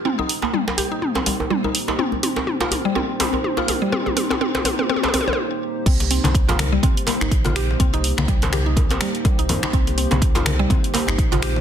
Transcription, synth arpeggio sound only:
X:1
M:4/4
L:1/16
Q:"Swing 16ths" 1/4=124
K:Cm
V:1 name="Synth arpeggio sound"
C E z B, G, z G E z C G, z G, E z E | C z C C z F z G, C z C C z F z G, | C z C C C z C C C z C z4 z | C z C C z F z G, C z B, E z F G z |
C E z B, G, z G E z C G, z G, E z E | C z C C z F z G, C z B, E z F G z |]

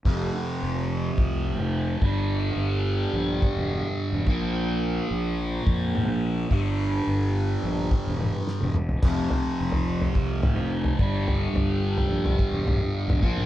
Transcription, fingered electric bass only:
X:1
M:4/4
L:1/16
Q:1/4=107
K:Gdor
V:1 name="Fingered electric bass" clef=bass
F,,,2 z2 F,,,4 C,,3 F,,,3 G,,,2- | G,,,2 G,,,4 B,,,2 z E,,,2 z2 E,,, B,,,2- | B,,,4 B,,,4 F,,3 B,,,3 G,,,2- | G,,,2 G,,,4 B,,,2 z E,,,2 z2 E,,,3 |
F,,,2 z2 F,,,4 C,,3 F,,,3 G,,,2- | G,,,2 G,,,4 B,,,2 z E,,,2 z2 E,,, B,,,2 |]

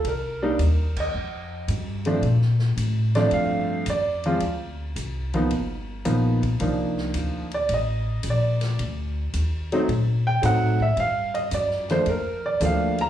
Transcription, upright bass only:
X:1
M:4/4
L:1/8
Q:"Swing" 1/4=110
K:Gm
V:1 name="Upright bass" clef=bass
C,,2 E,,2 F,,2 G,,2 | B,,2 A,,2 G,,2 F,,2 | D,,2 C,,2 G,,,2 ^A,,,2 | C,,2 D,,2 A,,,2 B,,,2 |
D,,2 E,,2 B,,2 A,,2 | G,,2 ^F,,2 =F,,2 D,,2 |]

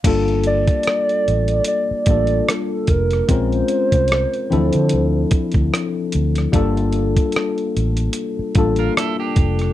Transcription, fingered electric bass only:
X:1
M:4/4
L:1/16
Q:"Swing 16ths" 1/4=74
K:Gdor
V:1 name="Fingered electric bass" clef=bass
G,,,4 z2 A,,,2 z2 A,,,2 z2 F,,,2 | B,,,2 z C,,2 z D,, D, D,,2 z D,, z2 D,,2 | G,,,4 z2 A,,,2 z2 A,,,2 z2 F,,,2 |]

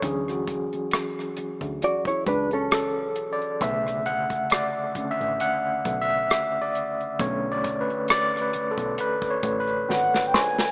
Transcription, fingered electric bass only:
X:1
M:4/4
L:1/16
Q:"Swing 16ths" 1/4=67
K:Bdor
V:1 name="Fingered electric bass" clef=bass
D,,3 z4 D,, z2 C,,4 B,,,2 | B,,,3 z4 A,,, z2 B,,,2 z4 | B,,,3 z4 B,,, z2 A,,,2 G,,,2 ^A,,, z |]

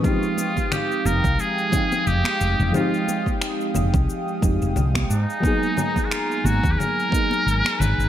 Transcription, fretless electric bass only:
X:1
M:4/4
L:1/16
Q:"Swing 16ths" 1/4=89
K:Fm
V:1 name="Fretless electric bass" clef=bass
z6 F,,, C,, z4 F,,, z F,,, F,,, | z6 F,,, C,, z2 F,,, F,,, C,,2 A,, z | z6 A,,, E,, z4 A,,, z A,,, A,,, |]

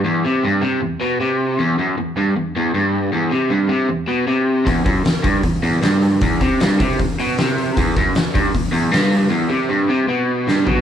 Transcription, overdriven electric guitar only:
X:1
M:4/4
L:1/8
Q:1/4=155
K:Em
V:1 name="Overdriven electric guitar" clef=bass
E,, C, G,, C, E,, B,, C,2 | E,, F,, E,, G,, E,, E,, G,,2 | E,, C, G,, C, E,, B,, C,2 | E,, F,, E,, G,, E,, E,, G,,2 |
E,, C, G,, C, E,, B,, C,2 | E,, F,, E,, G,, E,, E,, G,,2 | E,, C, G,, C, B,,2 G,, B,, |]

